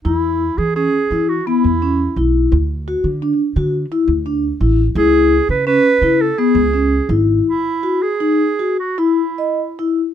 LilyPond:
<<
  \new Staff \with { instrumentName = "Clarinet" } { \time 7/8 \key e \major \tempo 4 = 85 e'8. gis'16 gis'8. fis'16 e'4 r8 | r2. r8 | gis'8. b'16 b'8. a'16 gis'4 r8 | e'8. gis'4 fis'16 e'4 r8 | }
  \new Staff \with { instrumentName = "Vibraphone" } { \time 7/8 \key e \major e'4 cis'8 e'8 b8 cis'8 e'8~ | e'8 fis'8 d'8 fis'8 e'8 d'8 e'8 | e'4 cis'8 e'8 b8 cis'8 e'8~ | e'8 fis'8 dis'8 fis'8 e'8 dis''8 e'8 | }
  \new Staff \with { instrumentName = "Upright bass" } { \clef bass \time 7/8 \key e \major e,8. e8 r16 e8 r16 e,8. b,,8 | d,8. d8 r16 d8 r16 d,8. a,,8 | cis,8. cis8 r16 cis8 r16 cis,8. gis,,8 | r2. r8 | }
>>